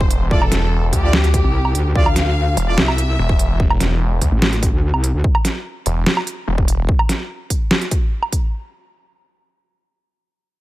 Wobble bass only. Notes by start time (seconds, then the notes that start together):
1.44 C2
1.75 D2
1.96 D2
2.78 C2
4.32 A1
4.73 D2
4.94 C2
5.14 D2